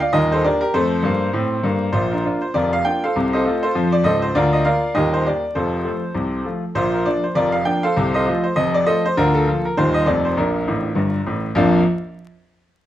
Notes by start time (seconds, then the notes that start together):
0.00 D5 F5
0.13 D#1 D#2 A#4 D#5
0.32 A4 C5
0.44 A#3 D4 G4 A#4 D5
0.61 G4 A#4
0.74 F2 A3 A4 C5
1.02 G2 A#3
1.33 A2 C4
1.63 G2 A#3
1.92 A#1 A#2 F4 C5
2.11 D4 F4 A#4
2.25 A#3 D4 F4
2.42 C5
2.54 F1 F2 F4 A#4 D5
2.73 F5
2.85 A#3 D4 F4 G5
3.04 A4 C5 F5
3.16 C2 C3
3.33 A4 C5 D#5
3.45 A3 C4 F4
3.63 F4 A4 C5
3.75 F2 F3
3.92 D5
4.04 C#1 C#2 A4 C5 D#5
4.22 C5
4.35 D2 D3 F4 A#4 D5
4.53 D#5
4.65 A#3 F4 A#4 D5 F5
4.95 D#1 D#2 G4 A#4 D#5
5.14 C5
5.26 A#3 G4 D5
5.55 F1 F2 F4 A4 C5
5.84 F3 A3 F4
6.15 C2 C3
6.45 F3 A3 F4
6.75 A#1 A#2 F4 C5
6.94 A#4
7.06 F3 A#3 D4 D5
7.24 C5
7.35 F1 F2 F4 A#4 D5
7.52 F5
7.65 F3 A#3 D4 G5
7.83 A4 C5 F5
7.96 C2 C3
8.14 A4 C5 D#5
8.26 F3 A3 F4
8.44 C5
8.56 F1 F2 D#5
8.74 D5
8.86 F3 A3 F4 A4 C5 D#5
9.06 C5
9.17 D2 D3 D4 F4 A#4
9.35 A4
9.47 F3 A#3 F4
9.65 A#4
9.77 D#1 D#2 G3 A#3 D#4 C5
9.94 D#5
10.06 F1 F2 F3 A3 D#4 D5
10.25 C5
10.37 A#1 A#2 D4 F4 A#4
10.68 A1 A2
10.95 G1 G2
11.26 A1 A2
11.55 A#1 F2 F3 A#3 D4 F4